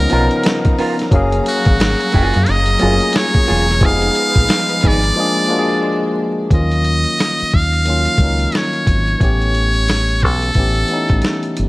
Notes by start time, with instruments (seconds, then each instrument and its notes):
Already playing: string section C#3 B3 D#4 F5 A#5, tine electric piano F3 B3 C#4 D#4 A#4, muted trumpet A#4
0.10 fingered electric bass B1, tine electric piano F3 B3 C#4 D#4, clean electric guitar B3 F4 A#4, closed hi-hat
0.14 tine electric piano A#4
0.21 tine electric piano A#4
0.31 closed hi-hat
0.43 muted clean electric guitar stroke, snare, closed hi-hat
0.65 kick, closed hi-hat
0.79 clean electric guitar B3 F4 A#4, open hi-hat
0.99 snare, closed hi-hat
1.11 fingered electric bass F#1, string section F#3 G#4, tine electric piano F#3 A#3 C#4 F5, kick, closed hi-hat
1.16 tine electric piano G#4
1.32 closed hi-hat
1.46 muted trumpet F#4, closed hi-hat
1.65 fingered electric bass G#1, kick, closed hi-hat
1.80 muted clean electric guitar stroke, snare, closed hi-hat
2.00 closed hi-hat
2.12 fingered electric bass F#1, clean electric guitar A#3 F4 G#4, kick, closed hi-hat
2.34 fingered electric bass F#2, closed hi-hat
2.46 fingered electric bass F#1, muted trumpet D#5, snare, closed hi-hat
2.66 closed hi-hat
2.79 fingered electric bass F#1, tine electric piano F#3 A3 C#4 F4, clean electric guitar A#3 F4 G#4, closed hi-hat
2.83 tine electric piano A#3 G#4
3.00 closed hi-hat
3.13 muted trumpet C#5, muted clean electric guitar stroke, snare, closed hi-hat
3.34 kick, closed hi-hat
3.47 fingered electric bass E1, clean electric guitar A#3 F4 G#4, open hi-hat
3.68 snare, closed hi-hat
3.80 fingered electric bass F1, tine electric piano F3 G#3 B3 D#4, string section F3 D#4 B4, kick, closed hi-hat
3.85 tine electric piano G#4, muted trumpet F5
4.02 closed hi-hat
4.15 closed hi-hat
4.34 fingered electric bass A#1, kick, closed hi-hat
4.49 muted clean electric guitar stroke, snare, closed hi-hat
4.69 closed hi-hat
4.81 fingered electric bass G#1, clean electric guitar B3 D#4 G#4, kick, closed hi-hat
4.87 muted trumpet D5
5.03 closed hi-hat
5.14 tine electric piano F3 G#3 A#3, string section G#3 A#3 D4
5.19 tine electric piano D4 G#4
5.48 tine electric piano F3 G#3 A#3 D4
5.52 tine electric piano F#4
5.59 tine electric piano G#4
6.49 fingered electric bass D#2, tine electric piano D#3 F3 A#3 C#4, kick, closed hi-hat
6.54 tine electric piano F#3 F4, muted trumpet D#5
6.71 closed hi-hat
6.84 closed hi-hat
7.04 closed hi-hat
7.19 snare, closed hi-hat
7.40 muted fingered electric bass stroke, closed hi-hat
7.51 fingered electric bass D#2, muted trumpet F5, kick, closed hi-hat
7.73 closed hi-hat
7.85 tine electric piano D#3 F#3 A#3 C#4, closed hi-hat
7.90 tine electric piano F4
8.05 closed hi-hat
8.18 fingered electric bass C#2, tine electric piano D#3 F#3 A#3 C#4, kick, closed hi-hat
8.23 tine electric piano D#4
8.39 closed hi-hat
8.52 snare, closed hi-hat
8.56 muted trumpet C#5
8.73 closed hi-hat
8.87 fingered electric bass G#1, kick, closed hi-hat
9.08 closed hi-hat
9.19 fingered electric bass A1, tine electric piano E3 A3 B3 C#4, kick, closed hi-hat
9.23 tine electric piano G4, muted trumpet C#5
9.42 closed hi-hat
9.55 closed hi-hat
9.74 closed hi-hat
9.88 snare, closed hi-hat
10.09 closed hi-hat
10.20 muted trumpet A4, kick, closed hi-hat
10.24 fingered electric bass B1
10.42 closed hi-hat
10.54 fingered electric bass A1, tine electric piano E3 A3 B3 C#4, kick, closed hi-hat
10.59 tine electric piano G4
10.75 closed hi-hat
10.88 tine electric piano E3 A3 B3 C#4, closed hi-hat
10.93 tine electric piano D#4
11.09 fingered electric bass A1, kick, closed hi-hat
11.22 snare, closed hi-hat
11.43 closed hi-hat
11.57 fingered electric bass G1, closed hi-hat